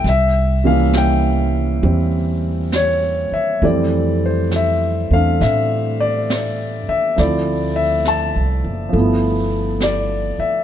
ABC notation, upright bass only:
X:1
M:4/4
L:1/8
Q:"Swing" 1/4=68
K:C
V:1 name="Upright bass" clef=bass
C,,4 E,,3 z | F,,3 E,, A,,3 z | D,,2- (3D,, C,, ^F,,, G,,,3 z |]